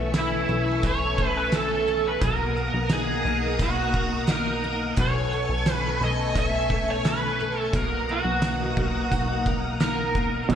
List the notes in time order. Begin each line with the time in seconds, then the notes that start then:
Already playing: B1 B2 E3 A3 C#4 A4 E5 G#5 C#6
0.14 C#4, snare, closed hi-hat
0.18 E4
0.49 B1 A3
0.83 B1 C#4 C#5, kick, closed hi-hat
1.18 A3, kick
1.28 B4
1.37 B4
1.52 C#4 A4, snare, closed hi-hat
1.88 A3
2.07 B4
2.21 B1 B2 A#3 A#4 F#5 A#5 D#6, kick, closed hi-hat
2.57 A#3
2.74 B1
2.89 D#4 G#4, snare, closed hi-hat
3.25 B1 A#3
3.59 B1 D#4 F#4, kick, closed hi-hat
3.94 A#3, kick
4.27 D#4, snare, closed hi-hat
4.31 A#4
4.64 A#3
4.96 B1 B2 A4 G#5 C#6, kick, closed hi-hat
5.01 C#5
5.33 A3
5.49 B1
5.66 C#4, snare, closed hi-hat
5.74 B4
6.01 B1 A3 D#5
6.35 B1 C#4 E5, kick, closed hi-hat
6.70 A3, kick
6.90 C#5
7.05 C#4 B4, snare, closed hi-hat
7.40 A3
7.60 A4
7.73 B1 B2 A#3 A#4 F#5 A#5 D#6, kick, closed hi-hat
8.09 A#3 F#4
8.24 B1
8.42 D#4, snare, closed hi-hat
8.77 B1 A#3, kick
9.11 B1 D#4, kick, closed hi-hat
9.46 A#3, kick
9.80 D#4 A#4, snare, closed hi-hat
10.15 A#3, kick
10.49 B1 B2 E3 A3 G#5 C#6, kick, closed hi-hat